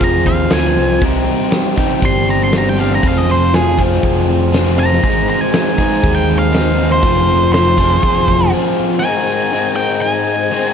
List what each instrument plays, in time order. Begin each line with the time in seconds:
Already playing: overdriven electric guitar F3 C4 F4 G#4
0.00 fingered electric bass F1, overdriven electric guitar G#4, lead electric guitar A#5, kick, open hi-hat
0.25 fingered electric bass D#2, overdriven electric guitar C4, lead electric guitar F5, kick
0.50 fingered electric bass D2, overdriven electric guitar F3 C4 F4 G#4, lead electric guitar G#5, snare, open hi-hat
0.77 fingered electric bass C2, overdriven electric guitar C4
1.01 fingered electric bass C2, overdriven electric guitar C3 G3 C4 D#4 G4, kick, open hi-hat
1.25 overdriven electric guitar C4
1.51 overdriven electric guitar G3, snare, open hi-hat
1.76 overdriven electric guitar C3 G3 C4 D#4 G4, kick
2.01 fingered electric bass G1, overdriven electric guitar G3 C4 D4 G4, kick, open hi-hat
2.05 lead electric guitar C6
2.24 overdriven electric guitar C4
2.30 lead electric guitar A#5
2.44 lead electric guitar C6
2.51 overdriven electric guitar G3, snare, open hi-hat
2.58 lead electric guitar A#5
2.69 lead electric guitar G5
2.75 overdriven electric guitar C4 D4 G4
2.80 overdriven electric guitar G3 C4, lead electric guitar F5
2.95 lead electric guitar A#5
3.02 fingered electric bass F1, overdriven electric guitar F3 C4 F4 G#4, kick, open hi-hat
3.08 lead electric guitar F5
3.18 lead electric guitar D#5
3.28 overdriven electric guitar C4, lead electric guitar C5
3.54 overdriven electric guitar F3, lead electric guitar G#4, snare, open hi-hat
3.77 overdriven electric guitar F3 C4 F4 G#4, kick
3.93 snare
4.03 fingered electric bass F1, overdriven electric guitar G#4, kick, open hi-hat
4.29 overdriven electric guitar C4
4.53 overdriven electric guitar F3 C4 F4 G#4, snare, open hi-hat
4.77 overdriven electric guitar C4, lead electric guitar A#5
4.93 snare
5.03 fingered electric bass G#1, overdriven electric guitar G#3 C4 D#4 G#4, kick, open hi-hat
5.28 overdriven electric guitar C4, lead electric guitar A#5
5.41 lead electric guitar G#5
5.53 overdriven electric guitar G#3, snare, open hi-hat
5.76 overdriven electric guitar C4 D#4 G#4, kick
5.80 overdriven electric guitar G#3
6.03 fingered electric bass D#2, overdriven electric guitar G#4, kick, open hi-hat
6.15 lead electric guitar G5
6.29 overdriven electric guitar C4
6.39 lead electric guitar F5
6.52 overdriven electric guitar G#3 C4 D#4 G#4, snare, open hi-hat
6.77 overdriven electric guitar C4
6.92 lead electric guitar C5
7.02 fingered electric bass F1, overdriven electric guitar F3 C4 F4 G#4, kick, open hi-hat
7.29 overdriven electric guitar C4
7.53 overdriven electric guitar F3, lead electric guitar C5, snare, open hi-hat
7.77 overdriven electric guitar F3 C4 F4 G#4, kick
8.02 fingered electric bass F1, overdriven electric guitar G#4, kick, open hi-hat
8.27 overdriven electric guitar C4, kick
8.51 overdriven electric guitar F3 C4 F4 G#4
8.77 overdriven electric guitar C4
8.99 overdriven electric guitar G#2 D#3 G#3 C4 D#4, tonewheel organ C5 D#5, lead electric guitar G#5
9.04 tonewheel organ G#4
9.27 overdriven electric guitar G#3 C4 D#4
9.51 overdriven electric guitar G#2 D#3 G#3 C4 D#4
9.76 overdriven electric guitar G#3 C4 D#4, lead electric guitar G5
10.01 lead electric guitar G#5
10.51 overdriven electric guitar D#3 G#3 C4 D#4